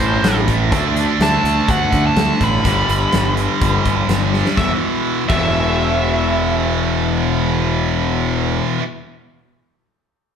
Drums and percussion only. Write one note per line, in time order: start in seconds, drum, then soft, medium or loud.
0.00 kick medium
0.00 closed hi-hat medium
0.24 snare loud
0.24 closed hi-hat medium
0.48 kick medium
0.48 closed hi-hat medium
0.72 kick loud
0.72 closed hi-hat medium
0.96 closed hi-hat medium
1.21 snare loud
1.21 closed hi-hat medium
1.45 closed hi-hat medium
1.69 kick loud
1.69 closed hi-hat medium
1.93 kick medium
1.93 closed hi-hat medium
2.16 snare loud
2.16 closed hi-hat medium
2.41 kick medium
2.41 closed hi-hat medium
2.65 kick medium
2.65 closed hi-hat medium
2.89 closed hi-hat medium
3.12 snare loud
3.12 closed hi-hat medium
3.37 closed hi-hat medium
3.61 kick loud
3.61 closed hi-hat medium
3.85 kick medium
3.85 closed hi-hat medium
4.09 snare medium
4.09 closed hi-hat medium
4.34 snare soft
4.46 snare medium
4.57 kick medium
4.57 snare medium
5.30 kick medium
5.30 crash medium